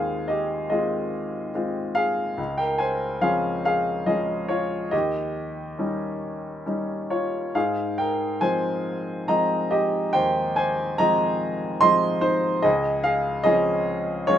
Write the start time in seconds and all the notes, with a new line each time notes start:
Already playing: D#2 G#3 C4 F4 G#4 C5 F5 G5 G#5
0.28 G4 D#5
0.70 G#3 C4 F4 G#4 D#5
1.54 G#3 C4 F4
1.95 G#4 F5
2.38 C#2
2.58 A#4 G5
2.78 C5 G#5
3.21 F3 C4 C#4 G#4 F5
3.65 G#4 F5
4.06 F3 G#3 C#4 G#4 D#5
4.48 F4 C#5
4.91 D#2 G4 D#5
5.79 G3 C#4 D#4
6.66 G3 C#4 D#4
7.10 F4 C#5
7.55 G#2 G#4 F5
7.98 A#4 G5
8.41 F3 G#3 C4 C5 G#5
9.28 F3 G#3 C4 D#5 A#5
9.71 G4 D#5
10.13 D#2 C5 G5
10.56 C5 G#5
10.98 F3 G#3 C4 D#5 A#5
11.81 F3 G#3 C4 D#5 C6
12.21 D#4 C5
12.62 C#2 G#4 D#5
13.04 G#4 F5
13.44 F3 C4 C#4 G#4 D#5
14.27 F3 G#3 C#4 F4 C#5